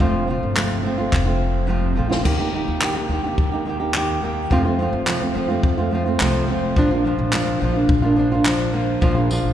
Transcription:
0.00 F1 F2 C3 F3 A3 C4 F4, kick
0.27 F3 A3 C4 F4
0.43 G1
0.55 F2 C3 F3 A3 C4 F4, clap
0.83 F3 A3 C4 F4
0.98 F3 A3 C4 F4
1.13 F1, kick, clap
1.26 F3 A3 C4 F4
1.67 F2 C3 F3 A3 C4 F4
1.95 A#1 F3 A3 C4 F4
2.09 F3 A3 C4 F4, snare
2.23 D#2 D#3 A#3 D#4 G4, kick, crash
2.37 A#3 D#4 G4
2.52 D#3 A#3 D#4
2.56 G4
2.68 D#2
2.81 D#3 A#3 D#4 G4, clap
2.96 A#3 D#4 G4
3.09 D#2 D#3 A#3 D#4
3.14 G4
3.23 D#4 G4
3.27 A#3
3.38 D#2, kick
3.52 A#3 D#4 G4
3.65 D#3 A#3 D#4 G4
3.80 A#3 D#4 G4
3.94 D#3 A#3 D#4 G4, clap
4.22 D#3 A#3 D#4 G4
4.50 F2 C3 F3 A3 C4 F4, kick
4.65 F3 A3 C4 F4
4.79 F3 A3 C4 F4
4.93 F2
5.07 F2 C3 F3 A3 C4 F4, clap
5.21 F3 A3 C4 F4
5.34 F2 F3 A3 C4 F4
5.48 F3 A3 C4 F4
5.63 F2, kick
5.78 F3 A3 C4 F4
5.91 F3 A3 C4 F4
6.06 F3 A3 C4 F4
6.20 C2 F2 C3 F3 A3 C4 F4, clap
6.48 F1 F3 A3 C4 F4
6.76 A#1 A#2 F3 A#3 D4 F4, kick
6.91 A#3 D4 F4
7.04 F3 A#3 D4 F4
7.18 A#1
7.32 A#2 F3 A#3 D4 F4, clap
7.60 A#1 F3 A#3 D4 F4
7.74 A#3 D4 F4
7.89 A#1, kick
8.02 A#3 D4 F4
8.16 F3 A#3 D4 F4
8.32 A#3 D4 F4
8.45 A#2 F3 A#3 D4 F4, clap
8.73 F3 A#3 D4 F4
9.01 A#1 A#2 F3 A#3 D4 F4, kick
9.15 A#3 D4 F4
9.30 F3 A#3 D4 F4, tambourine
9.45 A#1

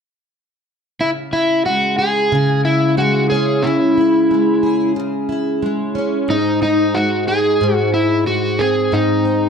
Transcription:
1.00 C#3 E4
1.33 E4
1.66 G#3 F#4
1.99 G#4
2.32 C#3
2.65 E4
2.97 G#3 F#4
3.30 C#4 G#4
3.63 C#3 E4
3.98 E4
4.31 G#3
4.63 G#4
4.96 C#3
5.29 E4
5.62 G#3
5.95 C#4
6.28 G#2 D#4
6.62 D#4
6.94 G#3 F#4
7.28 G#4
7.61 G#2
7.74 F#4
7.94 E4
8.26 G#3 F#4
8.59 C4 G#4
8.92 G#2 D#4
9.25 D#4

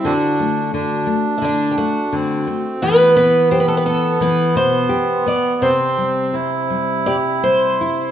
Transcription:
Already playing: C4
0.04 D3 D4 F#4
0.40 A3
0.73 D3 D4
1.07 A3
1.38 D3 E4
1.45 D4
1.71 G4
1.77 A3 F#4
2.13 D3 C4
2.47 A3
2.81 E3 B3 B4
3.17 B3 B4
3.51 G4 C5
3.60 B4
3.68 A4
3.77 B4
3.86 B3 A4
4.21 E3 B4
4.55 B2 C5
4.89 G4
5.26 B3 D5
5.61 C3 C4 C5
5.98 G3
6.33 C4 E4
6.70 G3
7.06 G4 D5
7.43 G3 C5
7.81 E4

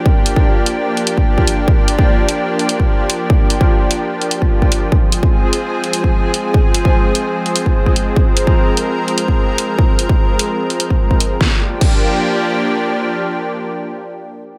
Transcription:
Already playing: F3 A#3 D4 G4
0.06 kick
0.26 closed hi-hat
0.36 kick
0.66 closed hi-hat
0.97 closed hi-hat
1.07 closed hi-hat
1.18 kick
1.38 kick
1.47 closed hi-hat
1.68 kick
1.88 closed hi-hat
1.99 kick
2.29 closed hi-hat
2.59 closed hi-hat
2.69 closed hi-hat
2.80 kick
3.10 closed hi-hat
3.30 kick
3.50 closed hi-hat
3.61 kick
3.91 closed hi-hat
4.21 closed hi-hat
4.31 closed hi-hat
4.42 kick
4.62 kick
4.72 closed hi-hat
4.92 G#3 C4 G#4, kick
5.12 closed hi-hat
5.23 kick
5.53 closed hi-hat
5.84 closed hi-hat
5.93 closed hi-hat
6.04 kick
6.34 closed hi-hat
6.54 kick
6.74 closed hi-hat
6.85 kick
7.15 closed hi-hat
7.46 closed hi-hat
7.56 closed hi-hat
7.66 kick
7.86 kick
7.96 closed hi-hat
8.16 A#4, kick
8.37 closed hi-hat
8.47 kick
8.77 closed hi-hat
9.08 closed hi-hat
9.18 closed hi-hat
9.28 kick
9.58 closed hi-hat
9.79 kick
9.99 closed hi-hat
10.09 kick
10.39 closed hi-hat
10.70 closed hi-hat
10.80 closed hi-hat
10.90 kick
11.11 kick
11.20 closed hi-hat
11.41 F3 A#3 D4 G4, kick, snare
11.81 kick, crash

